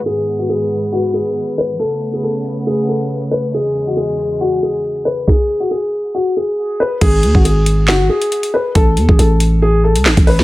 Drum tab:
CC |----------------|----------------|----------------|----------------|
HH |x-x-x-x----xxx--|x-x-x-x----x-xx-|x-x-x-x----xxx--|----------------|
CP |----------------|----------------|----------------|----------------|
SD |----------------|----------------|----------------|o---------------|
BD |----------------|----------------|----------------|o---------------|

CC |x---------------|----------------|
HH |x-x-x-x----xxx--|x-x-x-x----x-xo-|
CP |--------x-------|------------x---|
SD |--------o-------|------------o--o|
BD |o--o------------|o--o---------o--|